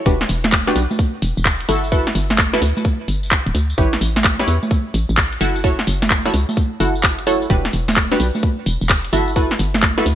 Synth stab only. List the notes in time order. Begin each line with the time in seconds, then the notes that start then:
0.06 D4 F#4 G4 B4
0.67 D4 F#4 G4 B4
1.69 E4 F#4 A4 E5
1.92 E4 F#4 A4 B4
2.53 E4 F#4 A4 B4
3.78 E4 G4 B4 C#5
4.39 E4 G4 B4 C#5
5.41 E4 F#4 A4 F#5
5.64 E4 F#4 A4 C#5
6.26 E4 F#4 A4 C#5
6.80 E4 F#4 A4 F#5
7.27 E4 F#4 A4 C#5
7.50 D4 F#4 G4 B4
8.12 D4 F#4 G4 B4
9.13 E4 F#4 A4 E5
9.36 E4 F#4 A4 B4
9.98 E4 F#4 A4 B4